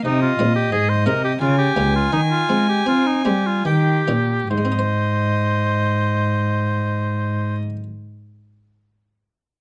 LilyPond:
<<
  \new Staff \with { instrumentName = "Violin" } { \time 3/4 \key aes \major \tempo 4 = 70 ees''2 aes''4~ | aes''2 g''8 r8 | ees''2.~ | ees''2. | }
  \new Staff \with { instrumentName = "Oboe" } { \time 3/4 \key aes \major ees'16 f'8 g'16 aes'16 c''16 bes'16 g'16 f'16 g'8 f'16 | ees'16 f'8 g'16 f'16 ees'16 g'16 f'16 g'4 | c''2.~ | c''2. | }
  \new Staff \with { instrumentName = "Harpsichord" } { \time 3/4 \key aes \major r8 <aes c' ees'>4 <aes c' ees'>8 r8 <bes des'>8 | r8 <aes c'>4 <aes c'>8 r8 <bes des' ees'>8 | <aes, aes c' ees' c''>2.~ | <aes, aes c' ees' c''>2. | }
  \new Staff \with { instrumentName = "Harpsichord" } { \clef bass \time 3/4 \key aes \major c8 bes,8 aes,8 c8 des8 des,8 | ees8 r8 c'8 g8 ees8 bes,8 | r2. | r2. | }
  \new Staff \with { instrumentName = "Cello" } { \clef bass \time 3/4 \key aes \major c8 bes,8 aes,8 c8 des8 des,8 | ees8 aes8 c'8 g8 ees8 bes,8 | aes,2.~ | aes,2. | }
>>